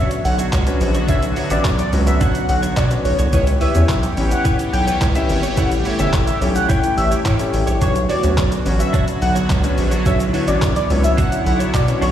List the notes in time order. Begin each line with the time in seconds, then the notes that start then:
Already playing: D3 F#3 B3 C#4 D4 F#4 B4 C#5
0.10 muted clean electric guitar stroke, closed hi-hat, shaker
0.24 B1 F#5, muted clean electric guitar stroke, open hi-hat, shaker
0.38 D4 F#4 C#5, closed hi-hat, shaker
0.52 C#2 D4 F#4 C#5, kick, clap, closed hi-hat, shaker
0.66 C#4 D4 F#4 B4 C#5, muted clean electric guitar stroke, closed hi-hat, shaker
0.81 A#1, muted clean electric guitar stroke, open hi-hat, shaker
0.94 D4 F#4 C#5, closed hi-hat, shaker
1.08 B1 C#4 D4 F#4 B4 C#5 E5, kick, closed hi-hat, shaker
1.23 muted clean electric guitar stroke, closed hi-hat, shaker
1.36 D4 F#4 B4 C#5, open hi-hat, shaker
1.50 A1 C#4 D4 F#4 B4 C#5 D5 E5, closed hi-hat, shaker
1.65 B1, kick, clap, closed hi-hat, shaker
1.79 D5, muted clean electric guitar stroke, closed hi-hat, shaker
1.93 C#2 C#4 D4 F#4 B4 C#5, open hi-hat, shaker
2.06 E5, muted clean electric guitar stroke, closed hi-hat, shaker
2.21 D4 F#4 C#5 F#5, kick, closed hi-hat, shaker
2.35 muted clean electric guitar stroke, closed hi-hat, shaker
2.49 B1 F#5, muted clean electric guitar stroke, open hi-hat, shaker
2.62 D4 F#4 C#5, closed hi-hat, shaker
2.77 B2 D4 F#4 C#5 D5, kick, clap, closed hi-hat, shaker
2.90 C#4 D4 F#4 B4 C#5, muted clean electric guitar stroke, closed hi-hat, shaker
3.05 B1 C#5, muted clean electric guitar stroke, open hi-hat, shaker
3.19 C2 D4 F#4 C#5, closed hi-hat, shaker
3.33 C#2 E3 G3 C#4 E4 G4 B4 C#5, kick, closed hi-hat, shaker
3.47 muted clean electric guitar stroke, closed hi-hat, shaker
3.61 E4 B4 C#5 E5, open hi-hat, shaker
3.75 E2 C#4 E4 G4 B4 C#5, closed hi-hat, shaker
3.89 B1 E5, muted clean electric guitar stroke, kick, clap, closed hi-hat, shaker
4.03 muted clean electric guitar stroke, closed hi-hat, shaker
4.17 A1 C#4 E4 G4 B4 C#5, open hi-hat, shaker
4.31 F#5, muted clean electric guitar stroke, closed hi-hat, shaker
4.44 E4 B4 C#5, kick, closed hi-hat, shaker
4.59 muted clean electric guitar stroke, closed hi-hat, shaker
4.73 B1 G5, muted clean electric guitar stroke, open hi-hat, shaker
4.87 E4 B4 C#5, closed hi-hat, shaker
5.01 C#2 E4 B4 C#5, kick, clap, closed hi-hat, shaker
5.15 C#4 E4 G4 B4 E5, muted clean electric guitar stroke, closed hi-hat, shaker
5.29 G#1, muted clean electric guitar stroke, open hi-hat, shaker
5.43 E4 B4 C#5, closed hi-hat, shaker
5.57 A1 A3 C#4 E4 G4 A4 C#5 F#5, kick, closed hi-hat, shaker
5.71 muted clean electric guitar stroke, closed hi-hat, shaker
5.85 E4 G4 A4 C#5 E5, open hi-hat, shaker
5.99 G1 C#4 E4 G4 A4 C#5 E5, closed hi-hat, shaker
6.13 A1, kick, clap, closed hi-hat, shaker
6.27 E5, muted clean electric guitar stroke, closed hi-hat, shaker
6.41 B1 C#4 E4 G4 A4 C#5, open hi-hat, shaker
6.55 F#5, muted clean electric guitar stroke, closed hi-hat, shaker
6.69 E4 G4 C#5 G5, kick, closed hi-hat, shaker
6.83 muted clean electric guitar stroke, closed hi-hat, shaker
6.97 A1 E5, muted clean electric guitar stroke, open hi-hat, shaker
7.11 E4 G4 C#5, closed hi-hat, shaker
7.25 A2 E4 G4 C#5, kick, clap, closed hi-hat, shaker
7.39 C#4 E4 G4 A4 C#5, muted clean electric guitar stroke, closed hi-hat, shaker
7.53 A1, muted clean electric guitar stroke, open hi-hat, shaker
7.67 A#1 E4 G4 C#5, closed hi-hat, shaker
7.81 B1 D3 F#3 B3 C#4 D4 F#4 B4 C#5, kick, closed hi-hat, shaker
7.95 muted clean electric guitar stroke, closed hi-hat, shaker
8.09 D4 F#4 B4 C#5 D5, open hi-hat, shaker
8.23 D2 C#4 D4 F#4 B4 C#5, closed hi-hat, shaker
8.37 B1 D5, kick, clap, closed hi-hat, shaker
8.51 muted clean electric guitar stroke, closed hi-hat, shaker
8.66 A1 C#4 D4 F#4 B4 C#5, open hi-hat, shaker
8.79 E5, muted clean electric guitar stroke, closed hi-hat, shaker
8.93 D4 F#4 C#5, kick, closed hi-hat, shaker
9.07 muted clean electric guitar stroke, closed hi-hat, shaker
9.21 B1 F#5, muted clean electric guitar stroke, open hi-hat, shaker
9.35 D4 F#4 C#5, closed hi-hat, shaker
9.49 C#2 D4 F#4 C#5, kick, clap, closed hi-hat, shaker
9.63 C#4 D4 F#4 B4 C#5, muted clean electric guitar stroke, closed hi-hat, shaker
9.77 A#1, muted clean electric guitar stroke, open hi-hat, shaker
9.91 D4 F#4 C#5, closed hi-hat, shaker
10.05 B1 C#4 D4 E4 F#4 B4 C#5 E5, kick, closed hi-hat, shaker
10.20 muted clean electric guitar stroke, closed hi-hat, shaker
10.33 D4 F#4 B4 C#5, open hi-hat, shaker
10.47 A1 C#4 D4 F#4 B4 C#5 D5, closed hi-hat, shaker
10.61 B1, muted clean electric guitar stroke, kick, clap, closed hi-hat, shaker
10.76 D5, muted clean electric guitar stroke, closed hi-hat, shaker
10.90 C#2 C#4 D4 F#4 B4 C#5, open hi-hat, shaker
11.04 E5, muted clean electric guitar stroke, closed hi-hat, shaker
11.17 D4 F#4 C#5 F#5, kick, closed hi-hat, shaker
11.32 muted clean electric guitar stroke, closed hi-hat, shaker
11.46 B1 F#5, muted clean electric guitar stroke, open hi-hat, shaker
11.59 D4 F#4 C#5, closed hi-hat, shaker
11.74 B2 D5, muted clean electric guitar stroke, kick, clap, closed hi-hat, shaker
11.88 C#4 D4 F#4 B4 C#5, muted clean electric guitar stroke, closed hi-hat, shaker
12.01 B1 D4 F#4 C#5, open hi-hat, shaker